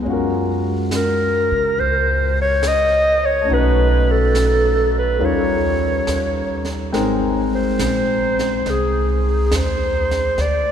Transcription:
0.02 1.47 F#2 medium
0.02 3.47 G#3 soft
0.02 3.44 C#4 soft
0.02 brush sweep soft
0.07 3.50 F4 soft
0.07 3.49 F#4 soft
0.13 3.53 A#4 soft
0.91 snare soft
0.91 hi-hat pedal medium
0.96 1.81 A#4 medium
1.52 1.76 C#3 medium
1.77 3.46 C#2 medium
1.77 2.38 C5 medium
1.77 brush sweep soft
2.42 2.69 C#5 medium
2.63 snare soft
2.63 hi-hat pedal medium
2.67 3.27 D#5 medium
3.26 3.55 C#5 medium
3.42 5.18 A3 soft
3.42 5.19 C#4 soft
3.48 5.18 B1 medium
3.48 5.18 D#4 soft
3.48 5.22 F#4 soft
3.48 brush sweep soft
3.53 5.23 B4 medium
3.53 4.13 B4 medium
4.11 4.96 A4 medium
4.35 snare soft
4.35 hi-hat pedal soft
4.98 5.27 B4 medium
5.19 6.03 D#2 medium
5.19 6.93 G3 soft
5.19 6.93 C#4 soft
5.19 6.91 D#4 soft
5.19 6.93 F4 soft
5.19 6.92 A#4 soft
5.19 brush sweep soft
5.25 6.69 C#5 medium
6.07 6.90 D#2 medium
6.07 snare soft
6.07 hi-hat pedal soft
6.65 snare soft
6.92 7.77 G#1 medium
6.92 9.35 G#3 medium
6.92 9.35 C4 soft
6.92 9.35 D#4 medium
6.92 9.36 A#4 medium
6.92 9.35 G5 medium
6.92 brush sweep soft
6.92 snare soft
7.55 8.72 C5 medium
7.79 8.63 A#1 medium
7.79 snare medium
7.79 hi-hat pedal soft
8.39 snare soft
8.66 9.49 C2 medium
8.66 brush sweep soft
8.66 snare soft
8.70 9.57 G#4 medium
9.51 10.35 D#2 medium
9.51 snare medium
9.51 hi-hat pedal soft
9.56 10.43 C5 medium
10.11 snare soft
10.37 10.72 D2 medium
10.37 10.72 D5 medium
10.37 brush sweep soft
10.37 snare soft

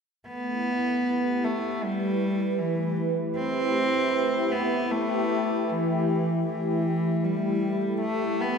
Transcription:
0.24 8.58 A3 medium
0.24 1.46 B3 medium
0.50 8.58 E4 medium
1.03 8.06 B4 medium
1.09 8.58 G4 medium
1.44 1.85 A3 medium
1.84 2.60 G3 medium
2.59 3.16 E3 medium
3.36 4.53 C4 loud
4.52 4.93 B3 medium
4.92 5.71 A3 medium
5.69 6.46 E3 medium
6.46 7.25 E3 medium
7.24 8.00 G3 medium
7.78 8.58 A4 medium
8.00 8.43 A3 medium
8.41 8.58 B3 medium

